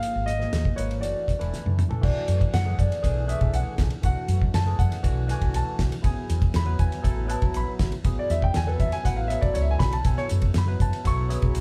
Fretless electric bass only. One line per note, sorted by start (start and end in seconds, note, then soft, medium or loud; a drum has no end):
0.15 0.45 G#1 medium
0.53 0.63 D#2 medium
0.78 1.03 G#1 medium
1.03 1.13 F#1 medium
1.28 muted fretless electric bass stroke soft
1.41 1.51 E1 medium
1.66 1.85 F#2 medium
2.03 2.13 B1 medium
2.28 2.48 F#2 medium
2.53 2.73 F#2 loud
2.79 2.89 F#2 medium
3.04 3.34 B1 loud
3.41 3.51 B1 medium
3.53 3.64 B1 medium
3.67 muted fretless electric bass stroke soft
3.79 3.89 B1 medium
4.03 4.14 B1 medium
4.28 4.48 F#2 medium
4.54 4.74 F#2 loud
4.79 4.89 F#2 medium
5.04 5.34 B1 loud
5.41 5.52 B1 medium
5.54 5.64 B1 medium
5.79 5.89 B1 medium
6.04 6.14 A1 loud
6.30 6.50 E2 medium
6.55 6.75 E2 loud
6.79 6.90 E2 medium
7.05 7.35 A1 medium
7.42 7.52 A1 medium
7.56 7.66 A1 medium
7.80 7.90 A1 medium
8.05 8.15 A1 medium
8.30 8.50 E2 medium
8.56 8.76 E2 loud
8.80 8.90 E2 medium
9.05 9.35 A1 loud
9.43 9.53 A1 medium
9.56 9.79 C#2 medium
9.80 10.03 B1 medium
10.05 10.15 B1 medium
10.31 10.51 F#2 medium
10.55 10.75 F#2 loud
10.80 10.91 F#2 medium
11.05 11.35 B1 medium
11.43 11.53 B1 medium
11.56 11.61 B1 medium